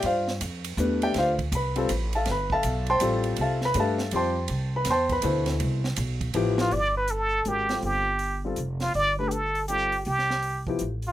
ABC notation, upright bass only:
X:1
M:3/4
L:1/8
Q:"Swing" 1/4=162
K:Gmix
V:1 name="Upright bass" clef=bass
G,,2 F,,2 E,,2 | D,,2 C,,2 A,,,2 | G,,,2 B,,,2 A,,,2 | C,,2 G,,2 F,,2 |
C,,2 E,,2 D,,2 | C,,2 B,,,2 A,,,2 | G,,,4 _A,,,2 | G,,,4 F,,,2 |
G,,,6 | C,,4 A,,,2 |]